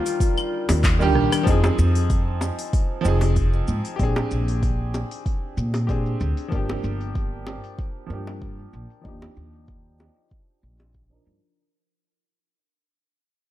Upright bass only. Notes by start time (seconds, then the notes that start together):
0.69 D#2
1.15 A#1
1.47 F2
1.79 F2
3.05 F1
3.68 G#2
4.00 A#1
4.31 A#1
5.57 A#2
6.21 D2
6.52 G1
6.84 G1
8.10 G2
8.73 A#1
9.05 D#2
9.37 D#2
10.63 A#1
11.27 G2